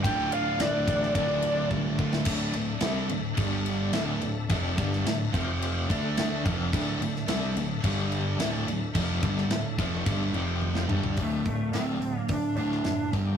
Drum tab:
CC |----------------|x-x-x-x-x-x-x-x-|x-x-x-x-x-x-x-x-|x-x-x-x-x-x-x-x-|
RD |x-x-x-x-x-x-----|----------------|----------------|----------------|
HH |----------------|----------------|----------------|----------------|
SD |----o--o-------o|----o-------o---|---oo-------o---|---oo-------o---|
T1 |----------------|----------------|----------------|----------------|
T2 |----------------|----------------|----------------|----------------|
FT |----------------|----------------|----------------|----------------|
BD |o-----o-o---o-o-|o-------o-------|o-o---o---o---o-|o-------o-------|

CC |x-x-x-x-x-x-----|----------------|
RD |----------------|----------------|
HH |----------------|o-o-o-o-o-o-o-o-|
SD |---oo--------o--|----o------oo---|
T1 |------------o---|----------------|
T2 |--------------o-|----------------|
FT |---------------o|----------------|
BD |o-o---o-o-------|o-o-----o-----o-|